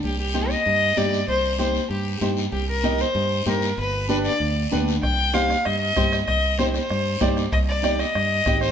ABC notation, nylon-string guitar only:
X:1
M:4/4
L:1/8
Q:1/4=192
K:Cm
V:1 name="Nylon-string guitar"
z2 [EGc] z3 [EGe] z | z2 [EGc] z3 [EGc] z | z2 [EGe] z3 [EGc] z | z2 [DG=B] z3 [DGB] z |
z2 [EGc] z3 [EGc] z | z2 [EGc] z3 [EGd] z | z2 [EGd] z3 [EGe] z |]